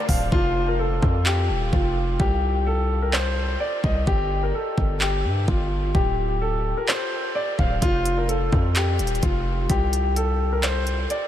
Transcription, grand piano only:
0.09 F5
0.32 F4
0.68 A#4
0.79 A4
1.26 G4
1.73 F4
2.20 G4
2.67 A4
3.02 A#4
3.13 C5
3.60 D5
3.84 D#5
4.07 G4
4.43 A#4
4.54 A4
5.01 G4
5.48 F4
5.95 G4
6.41 A4
6.77 A#4
6.88 C5
7.35 D5
7.59 F5
7.82 F4
8.18 A#4
8.29 A4
8.76 G4
9.23 F4
9.70 G4
10.16 A4
10.52 A#4
10.63 C5
11.10 D5

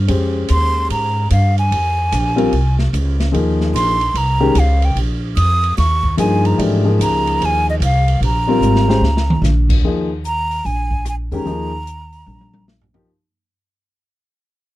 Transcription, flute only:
0.51 C6
0.92 A#5
1.32 F5
1.59 G#5
3.75 C6
4.17 A#5
4.59 F5
4.85 G5
5.37 D#6
5.78 C#6
6.19 G#5
6.46 A#5
7.03 A#5
7.45 G#5
7.70 D#5
7.84 F5
8.25 A#5
10.26 A#5
10.66 G#5
11.09 G#5
11.35 A#5

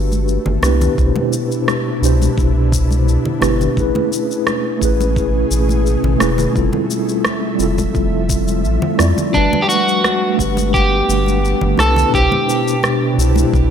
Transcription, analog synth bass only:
Already playing: G1
0.46 G1
0.62 C2
0.98 C2
2.02 C2
2.38 C2
3.42 G1
3.77 A1
4.82 A1
5.51 A1
6.03 A1
6.20 E1
6.56 F1
7.59 F1
7.95 F1
8.65 A1
8.99 F2
9.34 G1
10.39 G1
11.09 G1
11.62 G1
11.78 C2
12.14 C2
13.18 C2
13.53 C2

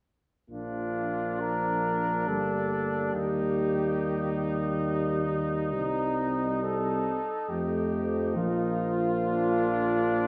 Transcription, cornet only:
0.51 F4
1.40 A#4
2.27 A4
3.14 G4
5.73 D#4
6.63 A4
7.49 G4
8.36 F4

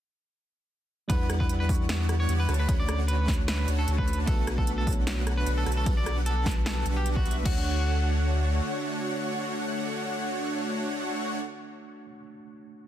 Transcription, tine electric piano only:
1.08 G3 D4 E4 B4 F#5
1.67 G3 D4 E4 F#5
1.71 C#6
2.67 A3 C#4 D4 F#4 C#5
3.26 A3 D4 F#4 C#5
4.26 A3 B3 D4 F#4 B4
4.85 A3 B3 D4 F#4
4.89 C#5
5.85 G3 B3 D4 F#4 B4
6.44 G3 B3 D4 F#4 B4
7.42 A3 D4
7.47 F#4 C#5

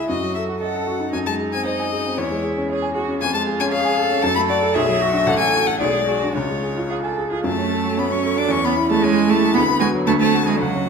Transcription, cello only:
0.08 F#4
0.61 A4
1.12 D#4
2.17 E4
2.70 G#4
2.94 F#4
3.20 F4
3.72 G#4
3.97 A4
4.75 G#4
5.01 F#4
5.27 A4
5.80 G#4
6.07 F#4
6.34 F4
6.89 G#4
7.02 A4
7.31 G#4
7.45 A3
7.98 B3
8.11 C#4
8.38 D4
8.51 C#4
8.66 B3
8.90 A3
9.02 G#3
9.30 A3
9.54 B3
9.79 G#3
10.06 A3
10.19 A3
10.46 G#3
10.58 F#3

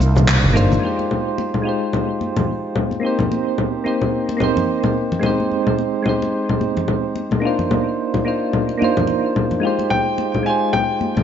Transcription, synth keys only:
Already playing: A#3 D4 D#4 F4 C5
0.53 A#3 D4 D#4 F4 C5
0.80 G#3 D#4 F4
0.85 G4 C5
1.62 G#3 D#4 F4
1.67 G4 C5
3.00 A#3 C4 D#4
3.05 G4 C5
3.84 A#3 C4 D#4 G4 C5
4.37 A#3 C4 D#4
4.42 G4 C5
5.19 G#3 C4 D#4
5.25 G4 C5
6.02 G#3 C4 D#4
6.08 G4 C5
7.40 A#3 D4 D#4
7.45 F4 C5
8.25 A#3 D4 D#4 F4 C5
8.78 A#3 D4 D#4
8.82 F4 C5
9.60 G#3 D#4 F4
9.65 G4 C5
10.43 G#3 D#4 F4
10.48 G4 C5

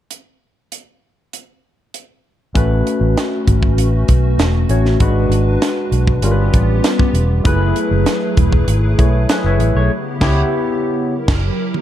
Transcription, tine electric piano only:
2.54 A3 C#4 F#4 B4
4.69 A3 C#4 F#4 C#5
5.00 G#3 D4 F#4 B4
6.23 G3 C#4 F4 A#4
6.31 B4
7.44 A3 E4 G#4 B4
8.98 A3 E4 G#4 C#5
9.29 G#4 B4
9.46 C#5 E5
9.76 A4 C#5
10.21 B3 E4 G4 C#5

